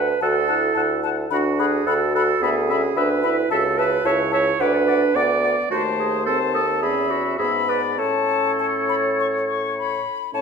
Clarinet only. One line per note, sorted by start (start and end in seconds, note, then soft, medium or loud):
0.00 0.21 B4 medium
0.22 1.03 A4 medium
1.32 1.61 F#4 medium
1.59 1.88 G#4 medium
1.87 2.14 A4 medium
2.15 2.44 A4 medium
2.42 2.99 G#4 medium
2.97 3.51 B4 medium
3.52 3.80 A4 medium
3.78 4.08 B4 medium
4.06 4.33 C#5 medium
4.33 4.62 C#5 medium
4.61 5.17 B4 medium
5.16 5.70 D5 medium
5.70 5.83 F#4 medium
5.99 6.25 G#4 medium
6.26 6.39 A4 medium
6.54 6.82 A4 medium
6.82 7.12 G#4 medium
7.11 7.38 F#4 medium
7.39 7.52 G#4 medium
7.68 7.82 B4 medium
7.99 9.72 A4 medium
10.34 10.41 C#5 soft